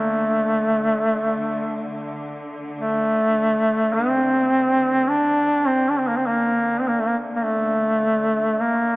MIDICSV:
0, 0, Header, 1, 3, 480
1, 0, Start_track
1, 0, Tempo, 1156069
1, 1153, Time_signature, 4, 2, 24, 8
1, 2109, Tempo, 1171875
1, 3699, End_track
2, 0, Start_track
2, 0, Title_t, "Duduk"
2, 0, Program_c, 0, 69
2, 0, Note_on_c, 0, 57, 73
2, 915, Note_off_c, 0, 57, 0
2, 1158, Note_on_c, 0, 57, 87
2, 1633, Note_on_c, 0, 60, 86
2, 1639, Note_off_c, 0, 57, 0
2, 2112, Note_on_c, 0, 62, 97
2, 2118, Note_off_c, 0, 60, 0
2, 2349, Note_on_c, 0, 60, 84
2, 2355, Note_off_c, 0, 62, 0
2, 2441, Note_on_c, 0, 62, 66
2, 2448, Note_off_c, 0, 60, 0
2, 2479, Note_on_c, 0, 60, 66
2, 2485, Note_off_c, 0, 62, 0
2, 2517, Note_on_c, 0, 58, 67
2, 2523, Note_off_c, 0, 60, 0
2, 2554, Note_on_c, 0, 60, 62
2, 2561, Note_off_c, 0, 58, 0
2, 2593, Note_on_c, 0, 58, 80
2, 2599, Note_off_c, 0, 60, 0
2, 2813, Note_on_c, 0, 60, 66
2, 2820, Note_off_c, 0, 58, 0
2, 2846, Note_on_c, 0, 58, 68
2, 2852, Note_off_c, 0, 60, 0
2, 2894, Note_on_c, 0, 57, 67
2, 2900, Note_off_c, 0, 58, 0
2, 2926, Note_on_c, 0, 58, 66
2, 2933, Note_off_c, 0, 57, 0
2, 2960, Note_off_c, 0, 58, 0
2, 3042, Note_on_c, 0, 58, 56
2, 3070, Note_on_c, 0, 57, 82
2, 3076, Note_off_c, 0, 58, 0
2, 3553, Note_on_c, 0, 58, 69
2, 3559, Note_off_c, 0, 57, 0
2, 3699, Note_off_c, 0, 58, 0
2, 3699, End_track
3, 0, Start_track
3, 0, Title_t, "String section"
3, 0, Program_c, 1, 48
3, 0, Note_on_c, 1, 50, 43
3, 3699, Note_off_c, 1, 50, 0
3, 3699, End_track
0, 0, End_of_file